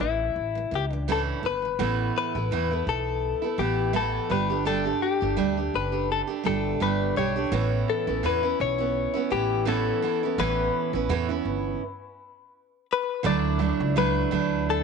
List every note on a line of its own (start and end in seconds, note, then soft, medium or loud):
0.00 0.29 A1 medium
0.00 0.29 A2 medium
0.00 0.31 E3 medium
0.00 0.94 E4 medium
0.36 0.65 A1 medium
0.55 0.70 A2 soft
0.55 0.72 E3 soft
0.71 1.31 C#2 medium
0.71 0.89 A2 medium
0.71 0.92 E3 medium
0.75 0.85 G4 medium
0.90 1.07 A2 soft
0.90 1.08 E3 medium
0.90 1.40 D4 medium
1.08 1.42 A2 medium
1.08 1.44 E3 medium
1.08 1.44 A3 medium
1.08 1.44 C#4 medium
1.08 1.45 E4 medium
1.12 1.21 A4 medium
1.43 1.73 G1 medium
1.43 1.61 A2 medium
1.43 1.64 E3 medium
1.43 2.13 B4 medium
1.62 1.78 A2 soft
1.62 1.78 E3 soft
1.79 2.08 A1 medium
1.79 2.35 A2 medium
1.79 2.35 E3 medium
1.79 2.35 A3 medium
1.79 2.35 B3 medium
1.79 2.34 E4 medium
2.18 2.84 B4 medium
2.35 2.48 A1 medium
2.35 2.51 A3 soft
2.35 2.52 B3 soft
2.35 2.51 E4 soft
2.51 2.80 E2 medium
2.51 2.71 A2 medium
2.51 2.71 E3 medium
2.51 2.71 A3 medium
2.51 2.71 B3 medium
2.51 2.70 E4 medium
2.71 3.44 A3 soft
2.71 3.42 B3 soft
2.71 3.41 E4 soft
2.87 3.32 B1 medium
2.87 3.62 A4 medium
3.42 3.58 A3 soft
3.42 3.59 B3 soft
3.42 3.58 E4 soft
3.58 4.17 A1 medium
3.58 3.92 E3 soft
3.58 3.92 A3 medium
3.58 3.93 B3 medium
3.58 3.94 E4 medium
3.58 3.92 G4 medium
3.93 4.30 A2 medium
3.93 4.29 E3 medium
3.93 4.30 A3 medium
3.93 4.30 B3 medium
3.93 4.30 E4 medium
3.93 4.29 A4 medium
4.30 4.89 G1 medium
4.30 4.50 G3 medium
4.30 4.50 A3 medium
4.30 4.50 D4 medium
4.30 4.48 G4 medium
4.30 4.66 B4 medium
4.50 4.65 A3 soft
4.50 4.65 D4 soft
4.50 4.66 G4 medium
4.65 4.85 G3 medium
4.65 4.86 A3 medium
4.65 4.85 D4 medium
4.65 4.84 G4 medium
4.65 5.00 A4 medium
4.85 5.22 A3 soft
4.85 5.21 D4 soft
4.85 5.19 G4 soft
5.02 5.76 G4 medium
5.21 5.35 G1 medium
5.21 5.36 A3 soft
5.21 5.37 D4 soft
5.21 5.37 G4 medium
5.37 5.68 D2 medium
5.37 5.57 G3 medium
5.37 5.57 A3 medium
5.37 5.58 D4 medium
5.37 5.56 G4 medium
5.57 5.93 A3 soft
5.57 5.92 D4 soft
5.57 5.91 G4 soft
5.74 6.19 F#1 medium
5.74 6.11 B4 medium
5.92 6.29 A3 soft
5.92 6.28 D4 soft
5.92 6.26 G4 soft
6.12 6.21 A4 medium
6.27 6.43 A3 soft
6.27 6.44 D4 soft
6.27 6.44 G4 soft
6.44 6.75 G1 medium
6.44 6.79 G3 medium
6.44 6.80 A3 medium
6.44 6.81 D4 medium
6.44 6.81 G4 medium
6.44 6.82 A4 medium
6.80 7.11 G1 medium
6.80 7.15 G3 medium
6.80 7.16 A3 medium
6.80 7.17 D4 medium
6.80 7.17 G4 medium
6.80 7.15 B4 medium
7.16 7.46 B1 medium
7.16 7.36 G3 medium
7.16 7.37 A3 medium
7.16 7.36 D4 medium
7.16 7.35 G4 medium
7.16 7.91 C#5 loud
7.36 7.52 A3 soft
7.36 7.53 D4 soft
7.36 7.52 G4 medium
7.52 7.81 A1 loud
7.52 8.08 A2 medium
7.52 8.08 E3 medium
7.52 8.08 B3 medium
7.52 8.07 C#4 medium
7.52 8.06 E4 medium
7.90 8.26 A4 medium
8.07 8.21 A1 medium
8.07 8.23 B3 soft
8.07 8.23 C#4 soft
8.07 8.24 E4 soft
8.23 8.53 E2 medium
8.23 8.43 A2 medium
8.23 8.44 E3 medium
8.23 8.44 B3 medium
8.23 8.43 C#4 medium
8.23 8.42 E4 medium
8.23 8.61 B4 medium
8.43 8.79 B3 soft
8.43 8.79 C#4 soft
8.43 8.77 E4 medium
8.60 9.05 B1 medium
8.60 9.28 C#5 medium
8.78 9.15 B3 soft
8.78 9.14 C#4 soft
8.78 9.12 E4 soft
9.14 9.30 B3 soft
9.14 9.31 C#4 soft
9.14 9.31 E4 medium
9.30 9.90 A1 medium
9.30 9.65 E3 medium
9.30 9.65 B3 medium
9.30 9.66 C#4 medium
9.30 9.66 E4 medium
9.30 9.65 G4 medium
9.65 10.02 A2 medium
9.65 10.01 E3 medium
9.65 10.02 B3 medium
9.65 10.03 C#4 medium
9.65 10.03 E4 medium
9.65 10.41 A4 medium
10.02 10.22 E3 medium
10.02 10.23 B3 medium
10.02 10.23 C#4 medium
10.02 10.22 E4 medium
10.23 10.38 B3 soft
10.23 10.38 C#4 soft
10.23 10.39 E4 medium
10.38 10.68 A1 loud
10.38 10.94 A2 medium
10.38 10.94 E3 medium
10.38 10.94 B3 medium
10.38 10.94 C#4 medium
10.38 10.92 E4 medium
10.38 12.85 B4 medium
10.93 11.07 A1 medium
10.93 11.09 B3 soft
10.93 11.10 C#4 soft
10.93 11.10 E4 soft
11.09 11.39 E2 medium
11.09 11.30 A2 medium
11.09 11.30 E3 medium
11.09 11.30 B3 medium
11.09 11.29 C#4 medium
11.09 11.28 E4 medium
11.29 11.82 B3 soft
11.29 11.82 C#4 soft
11.29 11.81 E4 medium
11.45 11.75 G1 medium
12.93 13.26 B4 medium
13.23 13.70 D2 loud
13.23 13.60 D3 medium
13.23 13.58 F#3 medium
13.23 13.58 A3 medium
13.23 13.59 D4 medium
13.23 13.61 E4 loud
13.23 13.97 D5 medium
13.59 13.95 F#3 medium
13.59 13.95 A3 medium
13.59 13.96 D4 medium
13.59 13.96 E4 medium
13.80 14.23 C#2 medium
13.96 14.30 F#3 medium
13.96 14.31 A3 medium
13.96 14.31 D4 medium
13.96 14.32 E4 medium
13.96 14.70 B4 medium
14.31 14.83 D2 medium
14.31 14.83 F#3 medium
14.31 14.83 A3 medium
14.31 14.83 D4 medium
14.31 14.83 E4 medium
14.70 14.83 A4 medium